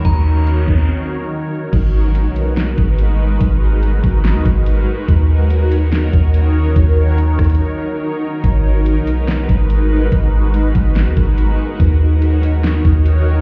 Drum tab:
CC |--------------------------------|x-------------------------------|--------------------------------|--------------------------------|
HH |x-------x-----------------------|x-------x---x---x---x---x-------|x-------x---x---x---x---x-------|x-------x---x---x---x---x-------|
SD |--------------------------------|----------------o---------------|----------------o---------------|----------------o---------------|
BD |o-----------o-------------------|o-------------------o-----------|o-----------o-------o-----------|o-------------------o-----------|

CC |--------------------------------|--------------------------------|--------------------------------|--------------------------------|
HH |x-------x---xxxx----------------|x-------x---x---x---x---x-------|x-------x---x---x---x---x-------|x-------x---x---x---x---x-------|
SD |------------r-------------------|----------------o---------------|----------------o---------------|----------------o---------------|
BD |o-----------o-------------------|o-------------------o-----------|o-----------o-------o-----------|o-------------------o-----------|